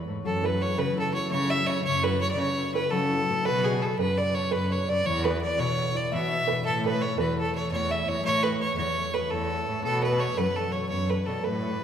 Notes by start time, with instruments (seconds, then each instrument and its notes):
Already playing: harp E3 A3 B3
0.07 cello G#2, harp A4 B4 C#5
0.24 cello F#2, harp F#3, felt piano A4, fiddle A4
0.42 harp E4 F#4 A4, felt piano B4, fiddle B4
0.59 harp E4 F#4 A4, felt piano C#5, fiddle C#5
0.77 harp C#3, cello C#3, felt piano B4, fiddle B4
0.96 harp E4 F#4 A4, felt piano A4, fiddle A4
1.13 harp E4 F#4 A4, fiddle C#5
1.31 cello C#3, harp F#3, felt piano C#5, fiddle C#5
1.50 harp E4 F#4 A4, felt piano E5, fiddle E5
1.66 cello C#3, harp E4 F#4 A4, fiddle C#5, felt piano C#5
1.84 cello F#2, harp C#3, fiddle C#5, felt piano C#5
2.03 harp E4 F#4 A4, felt piano B4, fiddle B4
2.20 harp E4 F#4 A4, felt piano C#5, fiddle C#5
2.31 fiddle D5
2.36 harp C#3, cello C#3, felt piano C#5, fiddle C#5
2.57 harp E4 F#4 A4
2.74 harp E4 F#4 A4, fiddle B4, felt piano B4
2.85 felt piano B4
2.91 cello C#3, harp F#3, fiddle A4, felt piano A4
3.12 harp E4 F#4 A4
3.28 cello A2, harp E4 F#4 A4
3.45 cello B2, harp B3, felt piano B4, fiddle B4
3.64 fiddle G#4, felt piano G#4, harp A4 B4 D5
3.82 felt piano A4, fiddle A4
3.99 cello F#2, harp F#3, fiddle B4, felt piano B4
4.15 harp A4 B4, felt piano D5, fiddle D5
4.21 harp D5
4.35 harp A4 B4 D5, fiddle C#5, felt piano C#5
4.51 cello F#2, harp B3, felt piano B4, fiddle B4
4.70 harp A4 B4 D5, felt piano C#5, fiddle C#5
4.88 cello F#2, harp A4 B4 D5, felt piano D5, fiddle D5
5.04 cello E2, harp E3, felt piano C#5, fiddle C#5
5.25 harp E4 G#4 B4, fiddle B4, felt piano B4
5.41 harp E4 G#4 B4, fiddle D5
5.58 harp B2, cello B2, felt piano C#5, fiddle C#5
5.72 felt piano C#5
5.77 harp E4 G#4 B4
5.83 felt piano C#5
5.94 harp E4 G#4 B4, felt piano D5, fiddle D5
6.12 cello B2, harp E3, felt piano E5, fiddle E5
6.31 harp E4 G#4 B4
6.48 cello B2, harp E4 G#4 B4, felt piano B4
6.65 cello A2, harp A3, felt piano A4, fiddle A4
6.84 harp G#4 A4 C#5, fiddle B4, felt piano B4
7.01 harp G#4 A4 C#5, fiddle C#5, felt piano C#5
7.18 cello E2, harp E3, felt piano B4, fiddle B4
7.38 harp E4 A4 C#5, felt piano A4, fiddle A4
7.55 harp G#4 A4 C#5, fiddle C#5
7.71 cello E2, harp A3, fiddle C#5, felt piano C#5
7.90 harp G#4 A4, felt piano E5, fiddle E5
8.07 cello E2, harp G#4 A4 C#5, felt piano C#5, fiddle C#5
8.24 cello A2, harp E3, felt piano C#5, fiddle C#5
8.43 harp G#4 A4 C#5, felt piano B4, fiddle B4
8.60 harp G#4 A4 C#5, felt piano C#5, fiddle C#5
8.77 cello E2, harp E3, fiddle C#5
8.97 harp G#4 A4 C#5
9.14 harp G#4 A4 C#5, felt piano B4, fiddle B4
9.30 cello E2, harp A3, felt piano A4, fiddle A4
9.50 harp E4 C#5
9.67 cello A2, harp G#4 A4 C#5
9.84 cello B2, harp B3, fiddle A4, felt piano A4
10.03 felt piano B4, fiddle B4, harp B4 D5
10.20 harp A4 B4 D5, felt piano C#5, fiddle C#5
10.37 cello F#2, harp F#3, felt piano B4, fiddle B4
10.56 fiddle A4, harp A4 B4 D5, felt piano A4
10.72 harp A4 B4 D5, fiddle C#5, felt piano C#5
10.89 cello F#2, harp B3, fiddle C#5, felt piano C#5
11.09 harp A4 B4 D5, fiddle B4, felt piano B4
11.26 cello B2, fiddle A4, harp A4 B4 D5, felt piano A4
11.43 cello A2, harp A3, felt piano B4, fiddle B4
11.63 harp A4 B4 C#5
11.80 harp A4